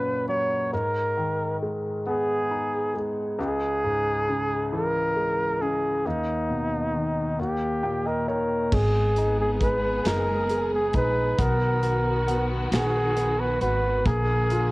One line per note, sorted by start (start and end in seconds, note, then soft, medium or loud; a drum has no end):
0.00 0.68 F#2 soft
0.00 0.68 A#2 soft
0.00 0.24 C#3 soft
0.00 0.27 F#3 soft
0.00 0.70 C#4 soft
0.00 0.28 B4 medium
0.28 0.71 F#3 soft
0.28 0.69 C#5 medium
0.73 3.35 G#2 soft
0.73 1.57 A#4 medium
1.17 2.91 D#3 soft
1.63 2.93 G#3 soft
2.07 3.35 B3 soft
2.07 3.03 G#4 medium
2.51 3.37 D#4 soft
2.95 3.38 G#3 soft
3.39 6.01 C#2 medium
3.39 4.69 G#4 medium
3.84 5.57 G#2 soft
4.29 5.60 C#3 soft
4.72 6.01 E3 soft
4.72 5.63 A#4 medium
5.16 6.03 G#3 soft
5.62 6.04 C#3 soft
5.62 6.08 G#4 medium
6.06 7.35 D#2 soft
6.06 7.39 D#4 medium
6.50 7.36 B2 soft
6.95 7.38 D#3 soft
7.39 8.68 D#2 soft
7.39 8.08 G4 medium
7.83 8.70 A#2 soft
7.83 8.04 G5 soft
8.06 8.28 A#4 medium
8.06 8.26 D#5 soft
8.28 8.71 D#3 soft
8.28 8.75 A#4 medium
8.28 8.69 C#5 soft
8.72 10.02 G#1 medium
8.72 9.60 G#3 soft
8.72 11.37 G#3 medium
8.72 11.37 B3 medium
8.72 11.37 G#4 medium
8.72 9.40 G#4 medium
8.72 kick medium
8.72 crash medium
9.16 10.05 D#4 soft
9.16 closed hi-hat soft
9.40 9.50 G#4 medium
9.61 10.49 G#3 soft
9.61 10.09 B4 medium
9.61 kick medium
9.61 closed hi-hat soft
10.05 10.90 F#1 medium
10.05 10.93 D#4 soft
10.05 10.73 A#4 medium
10.05 snare medium
10.05 closed hi-hat medium
10.49 11.36 G#3 soft
10.49 closed hi-hat soft
10.74 10.94 G#4 medium
10.93 11.36 A#1 medium
10.93 11.37 D#4 soft
10.93 11.43 B4 medium
10.93 kick medium
10.93 closed hi-hat soft
11.39 12.68 B1 medium
11.39 14.04 D#3 medium
11.39 12.26 B3 medium
11.39 14.03 B3 medium
11.39 14.03 F#4 medium
11.39 12.46 A#4 medium
11.39 kick medium
11.39 closed hi-hat medium
11.83 12.71 F#4 soft
11.83 closed hi-hat soft
12.28 13.16 B3 soft
12.28 closed hi-hat soft
12.72 13.57 A#1 medium
12.72 13.61 F#4 soft
12.72 13.41 G#4 medium
12.72 snare medium
12.72 closed hi-hat medium
13.17 14.03 B3 soft
13.17 closed hi-hat soft
13.40 13.61 B4 medium
13.61 14.03 G#1 medium
13.61 14.05 F#4 soft
13.61 14.07 B4 medium
13.61 closed hi-hat soft
14.04 14.72 A#1 medium
14.04 14.72 D3 medium
14.04 14.72 A#3 medium
14.04 14.72 G#4 medium
14.04 kick medium
14.04 closed hi-hat medium
14.50 14.72 F4 soft
14.50 closed hi-hat soft